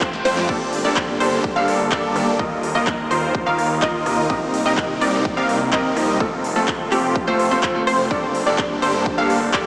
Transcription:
Already playing: F1 A3 C4 F4, reverse cymbal
0.01 kick, cross-stick, clap
0.13 snare
0.25 F2 C4 F4 C5, snare, open hi-hat
0.37 snare, open hi-hat
0.48 G1 G2 G3 A#3 D4 G4 A4 D5, kick, crash
0.73 open hi-hat
0.84 G1 G2 A#3 D4 G4 A4 D5
0.96 kick, clap
1.20 G1 G2 A#3 D4 G4 A4 C5, open hi-hat
1.44 kick
1.55 G1 G2 A#3 D4 G4 A4 F5
1.68 cross-stick, open hi-hat
1.91 G1 G2 A#3 D4 G4 A4 D5, kick, clap
2.15 D#3 A#3 D4 G4 A4, cross-stick, open hi-hat
2.39 D#2 D#3 A#3 D#4 F4 A#4 D#5, kick
2.63 open hi-hat
2.75 D#2 D#3 A#3 D#4 F4 A#4 D#5
2.87 kick, clap
3.10 D#2 D#3 A#3 D#4 F4 A#4 C5, open hi-hat
3.35 kick
3.46 D#2 D#3 A#3 D#4 F4 A#4 F5
3.59 cross-stick, open hi-hat
3.82 D#2 D#3 A#3 D#4 F4 A#4 D#5, kick, clap
4.06 C3 A#3 D#4 F4 A#4, cross-stick, open hi-hat
4.18 open hi-hat
4.29 C2 C3 G3 A#3 C4 D#4 G4 A#4 D#5, kick
4.54 open hi-hat
4.65 C2 C3 C4 D#4 G4 A#4 D#5
4.78 kick, clap
5.01 C2 C3 C4 D#4 G4 A#4 D5, open hi-hat
5.25 kick
5.37 C2 C3 C4 D#4 G4 A#4 F5
5.49 cross-stick, open hi-hat
5.72 C2 C3 C4 D#4 G4 A#4 D#5, kick, clap
5.96 F3 C4 D#4 G4 A#4, cross-stick, open hi-hat
6.20 F1 A3 C4 F4 A4, kick
6.44 open hi-hat
6.56 F1 A3 C4 F4 A4
6.68 kick, clap
6.91 F1 A3 C4 F4 G4 A4, clap, open hi-hat
7.16 kick
7.27 F1 A3 C4 F4 A4 C5
7.39 cross-stick, open hi-hat
7.51 F1 A3 C4 F4 A4 C5
7.63 kick, clap
7.74 A3 C4 F4 A4
7.87 F1 C4 F4 C5, cross-stick, open hi-hat
7.99 open hi-hat
8.10 G1 G2 G3 A#3 D4 G4 A4 D5, kick
8.35 open hi-hat
8.46 G1 G2 A#3 D4 G4 A4 D5
8.58 kick, clap
8.82 G1 G2 A#3 D4 G4 A4 C5, open hi-hat
9.06 kick
9.17 G1 G2 A#3 D4 G4 A4 F5
9.30 cross-stick, open hi-hat
9.53 G1 G2 A#3 D4 G4 A4 D5, kick, clap

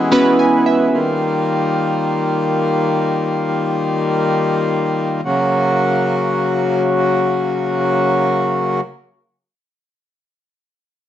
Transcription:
Already playing: E3 G#3 B3 C#4 E4 F#4 G4 G#4
0.11 B3 C#4 E4 F#4 B4 B5
0.39 G#5
0.66 E5
0.93 D#3 G3 A#3 F4
5.25 C#3 F#3 A#3 F#4

